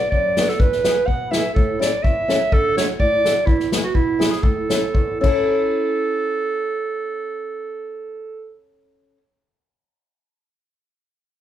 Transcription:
0.11 0.48 F#2 medium
0.11 0.51 D5 medium
0.11 kick medium
0.37 0.48 B3 medium
0.37 0.48 D4 medium
0.37 0.48 F#4 medium
0.37 snare medium
0.37 hi-hat pedal soft
0.49 0.62 A4 medium
0.49 snare soft
0.60 0.97 E2 medium
0.60 1.08 B4 loud
0.60 kick medium
0.72 snare soft
0.84 0.95 B3 medium
0.84 0.96 E4 medium
0.84 0.96 G#4 medium
0.84 snare medium
0.84 hi-hat pedal soft
1.07 1.44 B2 medium
1.07 1.33 F#5 medium
1.07 kick medium
1.31 1.42 B3 medium
1.31 1.42 E4 medium
1.31 1.42 G#4 medium
1.31 1.53 E5 medium
1.31 snare medium
1.31 hi-hat pedal soft
1.54 1.92 A2 medium
1.54 1.78 A4 medium
1.54 kick medium
1.79 1.90 C#4 medium
1.79 1.90 E4 medium
1.79 1.91 A4 medium
1.79 2.05 D5 medium
1.79 snare medium
1.79 hi-hat pedal medium
2.03 2.40 E2 medium
2.03 2.55 E5 medium
2.03 kick medium
2.28 2.39 C#4 medium
2.28 2.39 E4 medium
2.28 2.39 A4 medium
2.28 snare medium
2.28 hi-hat pedal soft
2.52 2.87 D3 medium
2.52 2.77 A4 loud
2.52 kick medium
2.76 2.86 D4 medium
2.76 2.87 F#4 medium
2.76 2.87 A4 medium
2.76 2.87 C#5 medium
2.76 snare medium
2.76 hi-hat pedal soft
2.99 3.35 A2 medium
2.99 3.48 D5 loud
2.99 kick medium
3.24 3.34 D4 medium
3.24 3.35 F#4 medium
3.24 3.35 A4 medium
3.24 snare medium
3.24 hi-hat pedal soft
3.46 3.82 E2 medium
3.46 3.71 E4 medium
3.46 kick medium
3.60 snare soft
3.72 3.82 B3 medium
3.72 3.82 E4 medium
3.72 3.83 G#4 medium
3.72 snare medium
3.72 hi-hat pedal soft
3.83 3.97 F#4 medium
3.94 4.31 B2 medium
3.94 4.32 E4 medium
3.94 kick medium
4.19 4.30 B3 medium
4.19 4.30 E4 medium
4.19 4.30 G#4 medium
4.19 snare medium
4.19 hi-hat pedal soft
4.31 4.44 G#4 medium
4.31 snare soft
4.43 4.81 A2 medium
4.43 5.20 A4 medium
4.43 kick medium
4.69 4.81 C#4 medium
4.69 4.81 E4 medium
4.69 4.81 A4 medium
4.69 snare medium
4.69 hi-hat pedal soft
4.93 5.20 E2 medium
4.93 kick medium
5.21 9.17 C#4 medium
5.21 9.19 E4 medium
5.21 8.54 A4 medium
5.21 kick medium
5.21 crash medium
5.25 9.22 A4 loud

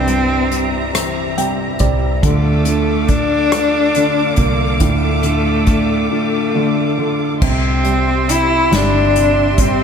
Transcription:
0.00 1.76 C2 medium
0.00 2.19 G2 medium
0.00 0.47 C3 soft
0.00 0.07 G3 soft
0.00 0.94 C4 medium
0.00 2.19 G4 medium
0.00 2.19 E5 medium
0.00 2.21 A#5 medium
0.07 1.76 G3 soft
0.07 0.49 G3 soft
0.07 0.50 C4 soft
0.07 0.51 E4 soft
0.07 0.51 C5 soft
0.07 closed hi-hat soft
0.51 0.93 G3 medium
0.51 0.93 C4 soft
0.51 0.93 E4 medium
0.51 0.92 C5 medium
0.51 closed hi-hat soft
0.93 1.38 C3 medium
0.93 1.38 E3 medium
0.93 1.36 G3 medium
0.93 1.36 C4 medium
0.93 1.37 E4 medium
0.93 1.37 C5 medium
0.93 cross-stick medium
0.93 closed hi-hat medium
1.37 2.21 C3 soft
1.37 1.80 G3 medium
1.37 1.80 C4 medium
1.37 1.79 E4 medium
1.37 1.79 C5 medium
1.37 1.78 G5 medium
1.37 closed hi-hat soft
1.79 2.20 C2 medium
1.79 2.22 G3 soft
1.79 2.23 G3 soft
1.79 2.23 C4 medium
1.79 2.23 E4 medium
1.79 2.23 C5 medium
1.79 2.20 D5 medium
1.79 kick medium
1.79 closed hi-hat soft
2.23 4.34 D2 medium
2.23 2.64 D3 medium
2.23 2.66 D3 medium
2.23 2.66 A3 medium
2.23 3.10 A3 medium
2.23 2.66 D4 medium
2.23 2.65 F4 medium
2.23 7.38 A4 medium
2.23 2.64 A4 medium
2.23 7.39 F5 medium
2.23 7.38 D6 medium
2.23 kick loud
2.23 closed hi-hat medium
2.65 3.94 D3 soft
2.65 3.07 D4 soft
2.65 3.08 F4 soft
2.65 3.08 A4 soft
2.65 closed hi-hat soft
3.08 3.51 A3 medium
3.08 3.51 D4 medium
3.08 4.38 D4 loud
3.08 3.51 F4 medium
3.08 3.50 A4 medium
3.08 kick medium
3.08 closed hi-hat soft
3.51 3.95 D3 medium
3.51 3.93 A3 medium
3.51 3.94 D4 medium
3.51 3.94 F4 medium
3.51 3.95 A4 medium
3.51 cross-stick loud
3.51 closed hi-hat medium
3.94 4.36 D3 soft
3.94 4.38 A3 medium
3.94 4.38 D4 medium
3.94 4.38 F4 medium
3.94 4.37 A4 medium
3.94 closed hi-hat soft
4.36 4.79 C2 medium
4.36 5.22 D3 medium
4.36 4.83 A#3 medium
4.36 4.80 D4 soft
4.36 4.80 F4 soft
4.36 4.81 A4 soft
4.36 kick medium
4.36 closed hi-hat soft
4.80 6.07 D2 loud
4.80 7.38 A2 medium
4.80 5.24 D3 medium
4.80 5.24 A3 medium
4.80 6.11 A3 medium
4.80 5.24 D4 medium
4.80 5.23 F4 medium
4.80 5.22 A4 medium
4.80 kick loud
4.80 closed hi-hat medium
5.23 6.54 D3 medium
5.23 5.67 D4 soft
5.23 5.67 F4 soft
5.23 5.67 A4 soft
5.23 closed hi-hat soft
5.67 6.10 A3 medium
5.67 6.10 D4 medium
5.67 6.10 F4 medium
5.67 6.09 A4 medium
5.67 kick medium
5.67 cross-stick soft
5.67 closed hi-hat soft
6.11 6.55 D3 soft
6.11 6.53 A3 medium
6.11 7.06 A3 medium
6.11 6.54 D4 medium
6.11 6.54 F4 medium
6.11 6.55 A4 medium
6.54 6.97 D3 medium
6.54 6.98 A3 medium
6.54 6.98 D4 medium
6.54 6.97 F4 medium
6.54 6.96 A4 medium
6.98 7.41 D3 soft
6.98 7.42 D4 soft
6.98 7.42 F4 soft
6.98 7.42 A4 medium
7.42 8.68 C2 loud
7.42 8.26 C3 medium
7.42 8.32 C4 medium
7.42 9.84 G4 medium
7.42 9.84 E5 medium
7.42 9.84 C6 medium
7.42 kick loud
7.42 crash medium
7.85 8.70 G3 soft
7.85 closed hi-hat medium
8.28 9.13 C3 medium
8.28 8.76 E4 medium
8.28 closed hi-hat medium
8.71 9.84 G1 medium
8.71 9.58 G3 medium
8.71 9.63 D4 loud
8.71 snare loud
8.71 closed hi-hat medium
9.14 9.84 C3 soft
9.14 closed hi-hat medium
9.58 9.84 G3 medium
9.58 9.84 C4 medium
9.58 kick medium
9.58 closed hi-hat medium

